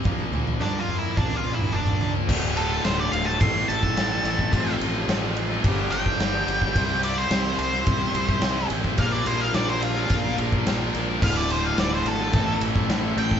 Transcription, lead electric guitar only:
\new Staff \with { instrumentName = "Lead electric guitar" } { \time 4/4 \key d \minor \tempo 4 = 107 r4 \tuplet 3/2 { <d' d''>8 <f' f''>8 <e' e''>8 <d' d''>8 <f' f''>8 <e' e''>8 } <d' d''>8. r16 | r8 a'8 c''16 d''16 f''16 a''16 c'''8 a''4.~ | a''8 r2 g''4.~ | g''8 d''16 c''8. c''2 r8 |
f''16 d''16 c''16 f''16 d''16 c''16 f'4 r4. | f''16 d''16 c''16 f''16 d''16 c''16 a'4 r4 g''8 | }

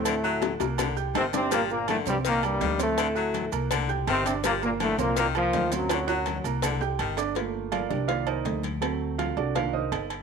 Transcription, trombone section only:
\new Staff \with { instrumentName = "Trombone section" } { \clef bass \time 4/4 \key c \dorian \tempo 4 = 164 <a, a>4. r4. <c c'>8 <c c'>8 | <bes, bes>8 <bes, bes>8 <a, a>8 <g, g>8 <bes, bes>8 <g, g>4 <a, a>8~ | <a, a>4. r4. <c c'>8 <c c'>8 | <bes, bes>8 <bes, bes>8 <a, a>8 <bes, bes>8 <bes, bes>8 <f f'>4 <fis, fis>8~ |
<fis, fis>4. r2 r8 | r1 | r1 | }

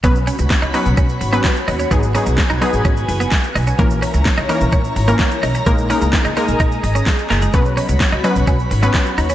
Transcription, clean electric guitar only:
\new Staff \with { instrumentName = "Clean electric guitar" } { \time 4/4 \key b \major \tempo 4 = 128 b16 r16 cis'16 r8 dis'16 dis'16 r16 cis'16 r8 b16 r8 dis'16 cis'16 | b16 r16 cis'16 r8 dis'16 dis'16 r16 cis'16 r8 b16 r8 dis'16 cis'16 | ais16 r16 cis'16 r8 dis'16 dis'16 r16 cis'16 r8 ais16 r8 dis'16 cis'16 | ais16 r16 cis'16 r8 dis'16 dis'16 r16 dis'16 r8 cis'16 r8 ais16 gis16 |
b16 r16 cis'16 r8 dis'16 dis'16 r16 cis'16 r8 b16 r8 dis'16 cis'16 | }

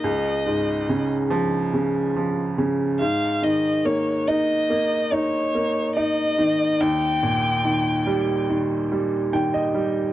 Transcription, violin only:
\new Staff \with { instrumentName = "Violin" } { \time 4/4 \key ees \mixolydian \tempo 4 = 71 ees''4~ ees''16 r2 r16 f''8 | ees''8 des''8 ees''4 des''4 ees''4 | g''2 r2 | }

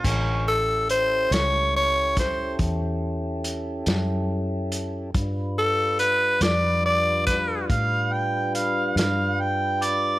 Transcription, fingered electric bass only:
\new Staff \with { instrumentName = "Fingered electric bass" } { \clef bass \time 12/8 \key a \dorian \tempo 4. = 47 a,,4. cis,4. e,4. fis,4. | g,4. f,4. a,4. g,4. | }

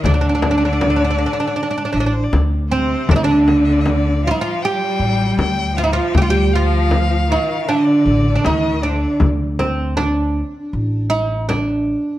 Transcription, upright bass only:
\new Staff \with { instrumentName = "Upright bass" } { \clef bass \time 4/4 \tempo 4 = 79 d,2 r8 a,,8 d,4 | d,2 r8 a,,8 d,4 | d,2 r8 a,,8 d,4 | d,2 a,,2 | }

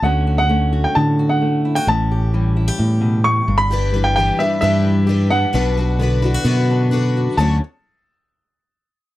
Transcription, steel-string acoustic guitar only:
\new Staff \with { instrumentName = "Steel-string acoustic guitar" } { \time 4/4 \key d \major \tempo 4 = 131 << { <a cis' fis'>8 fis'8 cis'8 fis'4 fis'4 e'16 fis'16 | cis'8 g'8 g8 e'16 g'4.~ g'16 d'8 | g'8 g8 g'4 d'4 g'8 d'8 | d'8 fis'8 b8 e'16 fis'8. d'4 fis'8 |
<a cis' fis'>8 r2. r8 | } \\ { d4 a4 a,4 a4 | a,4 e4 e,8 b,8 a,8 g,8~ | g,8 e4 g,4 e4 g,8 | b,4 d4 fis,4 d4 |
d8 r2. r8 | } >> }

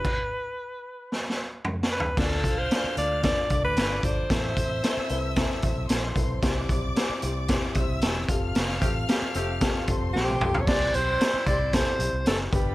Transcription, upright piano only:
\new Staff \with { instrumentName = "Upright piano" } { \time 4/4 \key c \major \tempo 4 = 113 r1 | <d' f' a' d''>8 <f' a' c''>8 <d' f' a' d''>8 <d' f' a' d''>8 <d' f' a' d''>8 <d' f' a' d''>8 <d' f' a' d''>8 <d' f' a' d''>8 | <c' e' a' c''>8 <c' e' a' c''>8 <c' e' a' c''>8 <c' e' a' b'>8 <c' e' a' c''>8 <c' e' a' c''>8 <c' e' a' c''>8 <c' e' a' b'>8 | <c' e' g' c''>8 <c' e' g' c''>8 <c' e' g' c''>8 <c' e' g' c''>8 <c' e' g' c''>8 <c' e' g' c''>8 <c' e' g' c''>8 <c' f' g' a'>8~ |
<c' f' g' a'>8 <c' f' g' a'>8 <c' f' g' a'>8 <c' f' g' a'>8 <c' f' g' a'>8 <c' f' g' a'>8 <c' f' g' a'>8 <c' f' g' a'>8 | <c' e' g' c''>8 <c' e' g' c''>8 <c' e' g' c''>8 <c' e' g' c''>8 <c' e' g' a'>8 <c' e' g' c''>8 <c' e' g' c''>8 <b d' g' b'>8 | }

